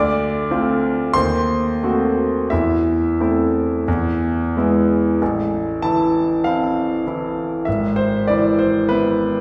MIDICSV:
0, 0, Header, 1, 2, 480
1, 0, Start_track
1, 0, Key_signature, 0, "minor"
1, 0, Tempo, 1279318
1, 431, Tempo, 1351351
1, 1871, Tempo, 1229508
1, 1873, Time_signature, 4, 2, 24, 8
1, 3512, End_track
2, 0, Start_track
2, 0, Title_t, "Grand piano"
2, 0, Program_c, 0, 0
2, 0, Note_on_c, 0, 38, 78
2, 0, Note_on_c, 0, 74, 80
2, 0, Note_on_c, 0, 86, 95
2, 23, Control_c, 0, 64, 127
2, 180, Note_off_c, 0, 38, 0
2, 191, Note_on_c, 0, 57, 52
2, 191, Note_on_c, 0, 60, 55
2, 193, Note_on_c, 0, 65, 63
2, 415, Note_off_c, 0, 74, 0
2, 418, Note_off_c, 0, 57, 0
2, 418, Note_off_c, 0, 60, 0
2, 419, Note_off_c, 0, 65, 0
2, 426, Note_on_c, 0, 84, 101
2, 428, Note_off_c, 0, 86, 0
2, 433, Note_on_c, 0, 72, 65
2, 436, Control_c, 0, 64, 0
2, 436, Note_on_c, 0, 39, 67
2, 494, Control_c, 0, 64, 127
2, 666, Note_off_c, 0, 39, 0
2, 674, Note_on_c, 0, 57, 49
2, 675, Note_on_c, 0, 60, 50
2, 676, Note_on_c, 0, 66, 53
2, 901, Note_off_c, 0, 57, 0
2, 901, Note_off_c, 0, 72, 0
2, 902, Note_off_c, 0, 60, 0
2, 902, Note_off_c, 0, 66, 0
2, 911, Note_on_c, 0, 76, 75
2, 912, Note_off_c, 0, 84, 0
2, 916, Note_on_c, 0, 64, 58
2, 920, Control_c, 0, 64, 0
2, 921, Note_on_c, 0, 40, 59
2, 992, Control_c, 0, 64, 127
2, 1152, Note_off_c, 0, 40, 0
2, 1158, Note_off_c, 0, 64, 0
2, 1161, Note_on_c, 0, 57, 49
2, 1162, Note_on_c, 0, 60, 47
2, 1164, Note_on_c, 0, 64, 53
2, 1385, Note_off_c, 0, 57, 0
2, 1386, Note_off_c, 0, 60, 0
2, 1386, Note_off_c, 0, 64, 0
2, 1401, Note_on_c, 0, 40, 71
2, 1403, Control_c, 0, 64, 0
2, 1467, Control_c, 0, 64, 127
2, 1635, Note_off_c, 0, 40, 0
2, 1639, Note_off_c, 0, 76, 0
2, 1644, Note_on_c, 0, 56, 50
2, 1646, Note_on_c, 0, 59, 52
2, 1648, Note_on_c, 0, 64, 54
2, 1860, Note_off_c, 0, 56, 0
2, 1861, Note_off_c, 0, 59, 0
2, 1862, Note_off_c, 0, 64, 0
2, 1878, Note_on_c, 0, 33, 61
2, 1879, Control_c, 0, 64, 0
2, 1937, Control_c, 0, 64, 127
2, 2114, Note_on_c, 0, 81, 84
2, 2121, Note_on_c, 0, 52, 47
2, 2121, Note_on_c, 0, 64, 51
2, 2343, Note_off_c, 0, 52, 0
2, 2343, Note_off_c, 0, 64, 0
2, 2355, Note_off_c, 0, 81, 0
2, 2355, Note_on_c, 0, 77, 75
2, 2362, Note_on_c, 0, 60, 42
2, 2364, Note_on_c, 0, 64, 49
2, 2581, Note_off_c, 0, 60, 0
2, 2582, Note_off_c, 0, 64, 0
2, 2598, Note_on_c, 0, 52, 44
2, 2600, Note_on_c, 0, 64, 47
2, 2818, Note_off_c, 0, 52, 0
2, 2819, Note_off_c, 0, 33, 0
2, 2820, Note_off_c, 0, 64, 0
2, 2828, Note_on_c, 0, 76, 66
2, 2832, Note_off_c, 0, 77, 0
2, 2839, Control_c, 0, 64, 0
2, 2839, Note_on_c, 0, 32, 61
2, 2892, Control_c, 0, 64, 127
2, 2948, Note_on_c, 0, 72, 81
2, 2950, Note_off_c, 0, 76, 0
2, 3070, Note_on_c, 0, 74, 75
2, 3072, Note_off_c, 0, 72, 0
2, 3078, Note_on_c, 0, 52, 42
2, 3082, Note_on_c, 0, 64, 45
2, 3192, Note_on_c, 0, 72, 68
2, 3193, Note_off_c, 0, 74, 0
2, 3301, Note_off_c, 0, 52, 0
2, 3303, Note_off_c, 0, 64, 0
2, 3309, Note_on_c, 0, 71, 82
2, 3313, Note_off_c, 0, 72, 0
2, 3319, Note_on_c, 0, 59, 53
2, 3319, Note_on_c, 0, 64, 57
2, 3512, Note_off_c, 0, 32, 0
2, 3512, Note_off_c, 0, 59, 0
2, 3512, Note_off_c, 0, 64, 0
2, 3512, Note_off_c, 0, 71, 0
2, 3512, End_track
0, 0, End_of_file